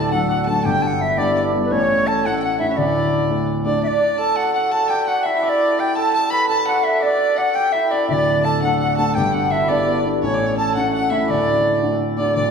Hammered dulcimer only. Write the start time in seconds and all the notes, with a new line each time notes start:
Already playing: D4 E4 G4 A4 B4
0.12 F#4
0.29 F#4
0.47 A4
0.65 G4
0.83 F#4
1.00 E4
1.17 D4
1.30 D4
1.41 D4
1.71 C#4
2.07 A4
2.25 F#4
2.42 F#4
2.59 E4
2.77 D4
3.66 D4
3.83 D4
4.18 A4
4.36 F#4
4.53 F#4
4.71 A4
4.89 G4
5.07 F#4
5.25 E4
5.43 D4
5.79 G4
5.97 A4
6.14 A4
6.32 B4
6.49 A4
6.68 F#4
7.03 D4
7.38 F#4
7.56 G4
7.74 E4
7.93 D4
8.09 D4
8.45 A4
8.63 F#4
8.81 F#4
8.99 A4
9.16 G4
9.34 F#4
9.51 E4
9.69 D4
9.81 D4
9.93 D4
10.23 C#4
10.58 A4
10.74 F#4
10.93 F#4
11.11 E4
11.29 D4